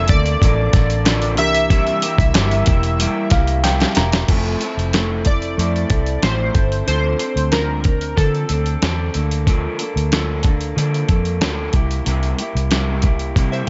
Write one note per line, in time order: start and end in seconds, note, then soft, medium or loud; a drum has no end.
0.00 0.11 F1 loud
0.00 1.33 C4 medium
0.00 1.34 D4 medium
0.00 1.35 F4 medium
0.00 1.35 A4 medium
0.08 0.35 D2 loud
0.08 0.41 A#3 soft
0.08 0.42 D4 soft
0.08 0.41 A4 medium
0.08 1.42 D5 loud
0.08 kick loud
0.08 closed hi-hat medium
0.26 closed hi-hat medium
0.41 0.67 A1 medium
0.41 0.73 F3 medium
0.41 0.74 A#3 medium
0.41 0.74 D4 medium
0.41 0.72 A4 medium
0.41 kick medium
0.41 closed hi-hat loud
0.73 1.37 A1 medium
0.73 1.05 A#3 soft
0.73 1.06 D4 medium
0.73 1.06 A4 medium
0.73 kick loud
0.73 snare soft
0.73 closed hi-hat medium
0.90 closed hi-hat medium
1.05 1.38 D3 loud
1.05 1.38 F3 loud
1.05 1.38 A#3 loud
1.05 1.38 D4 loud
1.05 1.36 A4 loud
1.05 snare loud
1.05 clap medium
1.05 closed hi-hat medium
1.22 closed hi-hat soft
1.35 1.89 C2 loud
1.35 3.92 E3 medium
1.35 3.91 D4 medium
1.35 1.70 E4 medium
1.35 1.70 G4 medium
1.35 3.93 G4 medium
1.35 3.28 E5 loud
1.35 closed hi-hat medium
1.40 1.69 A#3 soft
1.40 3.94 A#4 medium
1.54 closed hi-hat medium
1.69 2.02 C3 medium
1.69 2.02 G3 medium
1.69 2.03 A#3 loud
1.69 2.02 E4 medium
1.69 2.01 G4 medium
1.69 kick loud
1.69 closed hi-hat loud
1.87 closed hi-hat soft
2.02 2.34 A#3 soft
2.02 2.35 E4 soft
2.02 2.35 G4 medium
2.02 closed hi-hat medium
2.18 2.32 C2 loud
2.18 kick loud
2.18 closed hi-hat medium
2.34 2.61 G1 loud
2.34 2.67 C3 loud
2.34 2.67 G3 medium
2.34 2.68 A#3 loud
2.34 2.66 E4 loud
2.34 2.65 G4 loud
2.34 snare loud
2.34 clap medium
2.34 closed hi-hat loud
2.51 closed hi-hat soft
2.66 3.06 E1 loud
2.66 2.99 A#3 soft
2.66 3.00 E4 medium
2.66 2.99 G4 medium
2.66 kick medium
2.66 closed hi-hat medium
2.83 closed hi-hat medium
2.99 3.32 G3 medium
2.99 3.32 A#3 medium
2.99 3.31 E4 medium
2.99 3.29 G4 medium
2.99 closed hi-hat loud
3.30 3.83 C2 loud
3.30 3.63 A#3 medium
3.30 3.64 E4 medium
3.30 3.63 G4 medium
3.30 3.62 F5 medium
3.30 kick loud
3.30 snare soft
3.30 closed hi-hat medium
3.47 closed hi-hat medium
3.63 3.96 C3 medium
3.63 3.96 G3 medium
3.63 3.97 A#3 medium
3.63 3.96 E4 medium
3.63 3.94 G4 loud
3.63 3.94 G5 medium
3.63 snare medium
3.63 clap medium
3.63 closed hi-hat medium
3.80 snare medium
3.80 closed hi-hat soft
3.95 4.23 E1 medium
3.95 4.29 E4 soft
3.95 4.28 G4 medium
3.95 4.27 A#5 medium
3.95 snare medium
3.95 closed hi-hat medium
3.99 4.29 A#3 medium
4.12 snare loud
4.12 closed hi-hat medium
4.28 4.55 F1 medium
4.28 4.61 F3 medium
4.28 4.61 A3 medium
4.28 4.62 C4 medium
4.28 4.62 E4 medium
4.28 4.60 A4 medium
4.28 kick loud
4.28 closed hi-hat medium
4.28 crash medium
4.61 4.94 C4 soft
4.61 4.94 E4 medium
4.61 4.93 A4 medium
4.61 closed hi-hat medium
4.77 5.54 F1 medium
4.77 closed hi-hat soft
4.93 5.26 F3 medium
4.93 5.26 A3 medium
4.93 5.27 C4 medium
4.93 5.26 E4 medium
4.93 5.24 A4 medium
4.93 snare loud
4.93 closed hi-hat medium
5.25 5.57 C4 soft
5.25 5.58 E4 soft
5.25 5.58 A4 soft
5.25 6.26 D5 medium
5.25 kick medium
5.25 closed hi-hat medium
5.42 closed hi-hat soft
5.57 5.84 F2 medium
5.57 5.90 A3 medium
5.57 5.91 C4 medium
5.57 5.90 E4 medium
5.57 5.89 A4 medium
5.57 closed hi-hat medium
5.76 closed hi-hat soft
5.90 6.16 C2 medium
5.90 6.22 C4 soft
5.90 6.22 E4 soft
5.90 6.23 A4 soft
5.90 kick medium
5.90 closed hi-hat medium
6.06 closed hi-hat soft
6.22 6.49 A1 medium
6.22 6.55 F3 medium
6.22 6.55 A3 medium
6.22 6.56 C4 medium
6.22 6.55 E4 medium
6.22 6.53 A4 medium
6.22 6.87 C5 medium
6.22 snare loud
6.22 closed hi-hat medium
6.54 6.81 G1 medium
6.54 6.86 C4 soft
6.54 6.88 E4 soft
6.54 6.87 A4 soft
6.54 kick medium
6.54 closed hi-hat medium
6.72 closed hi-hat soft
6.86 7.14 D2 medium
6.86 7.20 D3 medium
6.86 7.20 F3 medium
6.86 7.20 C4 medium
6.86 7.19 D4 medium
6.86 7.18 A4 medium
6.86 7.55 C5 medium
6.86 closed hi-hat medium
7.19 7.52 C4 soft
7.19 7.52 D4 soft
7.19 7.52 A4 soft
7.19 closed hi-hat medium
7.36 8.13 D2 medium
7.36 closed hi-hat soft
7.52 7.85 D3 medium
7.52 7.85 F3 medium
7.52 7.85 C4 medium
7.52 7.85 D4 medium
7.52 8.19 A#4 medium
7.52 snare loud
7.52 closed hi-hat medium
7.84 8.16 C4 soft
7.84 8.17 D4 soft
7.84 kick medium
7.84 closed hi-hat medium
8.01 closed hi-hat soft
8.16 8.43 D3 medium
8.16 8.49 F3 medium
8.16 8.50 C4 medium
8.16 8.50 D4 medium
8.16 9.10 A4 medium
8.16 8.48 A4 medium
8.16 kick medium
8.16 closed hi-hat medium
8.35 closed hi-hat soft
8.49 8.76 D2 medium
8.49 8.82 C4 soft
8.49 8.82 D4 soft
8.49 8.82 A4 soft
8.49 closed hi-hat medium
8.66 closed hi-hat soft
8.82 9.08 E2 medium
8.82 9.15 D3 medium
8.82 9.15 C4 medium
8.82 9.15 D4 medium
8.82 9.13 A4 medium
8.82 snare loud
8.82 closed hi-hat medium
9.14 9.67 D2 medium
9.14 9.47 A#3 soft
9.14 9.47 D4 soft
9.14 9.47 A4 medium
9.14 closed hi-hat medium
9.31 closed hi-hat medium
9.47 9.79 D3 medium
9.47 9.80 F3 medium
9.47 9.80 A#3 medium
9.47 9.79 D4 medium
9.47 9.78 A4 medium
9.47 kick loud
9.47 closed hi-hat medium
9.79 10.12 A#3 medium
9.79 10.12 D4 medium
9.79 10.12 A4 medium
9.79 closed hi-hat medium
9.96 10.73 D2 medium
9.96 closed hi-hat soft
10.12 10.44 D3 medium
10.12 10.45 F3 medium
10.12 10.45 A#3 medium
10.12 10.44 D4 medium
10.12 10.42 A4 loud
10.12 snare loud
10.12 closed hi-hat medium
10.43 10.77 D4 soft
10.43 10.76 A4 medium
10.43 kick medium
10.43 closed hi-hat medium
10.47 10.76 A#3 soft
10.61 closed hi-hat soft
10.76 11.03 D3 medium
10.76 11.09 F3 medium
10.76 11.09 A#3 medium
10.76 11.09 D4 medium
10.76 11.08 A4 medium
10.76 closed hi-hat medium
10.94 closed hi-hat soft
11.09 11.42 F2 medium
11.09 11.41 A#3 soft
11.09 11.42 D4 soft
11.09 11.41 A4 medium
11.09 kick medium
11.09 closed hi-hat medium
11.25 closed hi-hat soft
11.41 11.68 D2 medium
11.41 11.73 D3 medium
11.41 11.74 F3 medium
11.41 11.74 A#3 medium
11.41 11.75 D4 medium
11.41 11.73 A4 medium
11.41 snare loud
11.41 closed hi-hat medium
11.73 12.00 C2 medium
11.73 12.06 E4 soft
11.73 12.06 G4 soft
11.73 kick medium
11.73 closed hi-hat medium
11.77 12.06 A#3 soft
11.91 closed hi-hat medium
12.05 12.32 C2 loud
12.05 12.38 C3 medium
12.05 12.39 G3 medium
12.05 12.39 A#3 medium
12.05 12.39 E4 medium
12.05 12.37 G4 medium
12.05 closed hi-hat medium
12.23 closed hi-hat soft
12.38 12.71 A#3 soft
12.38 12.71 E4 medium
12.38 12.71 G4 soft
12.38 closed hi-hat medium
12.55 13.32 C2 medium
12.55 closed hi-hat soft
12.71 13.03 C3 medium
12.71 13.03 G3 medium
12.71 13.04 A#3 medium
12.71 13.04 E4 medium
12.71 13.02 G4 medium
12.71 snare loud
12.71 closed hi-hat medium
13.02 13.35 A#3 soft
13.02 13.36 E4 medium
13.02 13.36 G4 medium
13.02 kick medium
13.02 closed hi-hat medium
13.19 closed hi-hat soft
13.36 13.62 C3 medium
13.36 13.68 G3 medium
13.36 13.69 A#3 medium
13.36 13.68 E4 medium
13.36 13.66 G4 medium
13.36 kick medium
13.36 closed hi-hat loud
13.52 13.68 C5 medium
13.52 13.67 E5 medium
13.52 closed hi-hat soft